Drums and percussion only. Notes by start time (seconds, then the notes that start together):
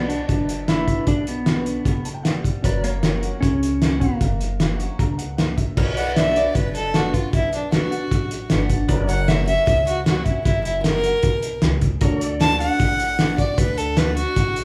0.10 closed hi-hat
0.29 kick, closed hi-hat
0.49 closed hi-hat
0.68 snare, closed hi-hat
0.88 kick, closed hi-hat
1.07 kick, closed hi-hat
1.27 closed hi-hat
1.46 snare, closed hi-hat
1.66 closed hi-hat
1.85 kick, closed hi-hat
2.05 closed hi-hat
2.25 snare, closed hi-hat
2.44 kick, closed hi-hat
2.64 kick, closed hi-hat
2.84 closed hi-hat
3.03 snare, closed hi-hat
3.23 closed hi-hat
3.43 kick, closed hi-hat
3.63 closed hi-hat
3.82 snare, closed hi-hat
4.01 kick, closed hi-hat
4.21 kick, closed hi-hat
4.41 closed hi-hat
4.60 snare, closed hi-hat
4.80 closed hi-hat
4.99 kick, closed hi-hat
5.19 closed hi-hat
5.38 snare, closed hi-hat
5.58 kick, closed hi-hat
5.77 kick, crash
5.97 closed hi-hat
6.16 snare, closed hi-hat
6.36 closed hi-hat
6.55 kick, closed hi-hat
6.75 closed hi-hat
6.94 snare, closed hi-hat
7.14 kick, closed hi-hat
7.33 kick, closed hi-hat
7.53 closed hi-hat
7.72 snare, closed hi-hat
7.92 closed hi-hat
8.11 kick, closed hi-hat
8.31 closed hi-hat
8.50 snare, closed hi-hat
8.70 kick, closed hi-hat
8.89 kick, closed hi-hat
9.09 closed hi-hat
9.28 snare, closed hi-hat
9.48 closed hi-hat
9.67 kick, closed hi-hat
9.87 closed hi-hat
10.06 snare, closed hi-hat
10.26 kick, closed hi-hat
10.45 kick, closed hi-hat
10.65 closed hi-hat
10.84 snare, closed hi-hat
11.04 closed hi-hat
11.23 kick, closed hi-hat
11.43 closed hi-hat
11.62 snare, closed hi-hat
11.81 kick, closed hi-hat
12.01 kick, closed hi-hat
12.21 closed hi-hat
12.41 snare, closed hi-hat
12.60 closed hi-hat
12.80 kick, closed hi-hat
13.00 closed hi-hat
13.19 snare, closed hi-hat
13.38 kick, closed hi-hat
13.58 kick, closed hi-hat
13.78 closed hi-hat
13.97 snare, closed hi-hat
14.17 closed hi-hat
14.36 kick, closed hi-hat
14.56 closed hi-hat